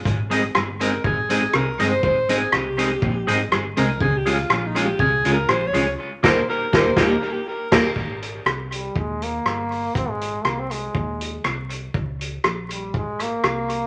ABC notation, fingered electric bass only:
X:1
M:4/4
L:1/8
Q:1/4=121
K:Ab
V:1 name="Fingered electric bass" clef=bass
A,,,2 G,,,2 A,,,2 C,, G,,, | A,,,2 C,,2 B,,, A,,, G,,, C,, | D,,2 B,,,2 C,, D,, B,,, D,, | z E,, z E,, E,, z2 E,, |
A,,,2 C,,2 E,,2 G,,,2 | A,,,2 C,,2 E,,2 C,,2 | D,,2 B,,,2 A,,,2 C,,2 |]